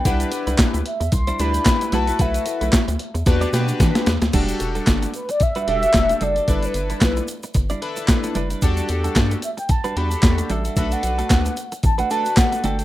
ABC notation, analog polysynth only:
X:1
M:4/4
L:1/8
Q:"Swing 16ths" 1/4=112
K:Em
V:1 name="Analog polysynth"
[DEGB]3 z2 [DEGB]2 [EFAB]- | [EFAB]2 z2 [DFGB] [DFGB]2 z | [DFGA]3 z2 [DFGA]2 z | [DEAB]3 z2 [DEAB]2 z |
[DFGA]3 z2 [DFGA]2 z | [DFAB]3 z2 [DFAB]2 z |]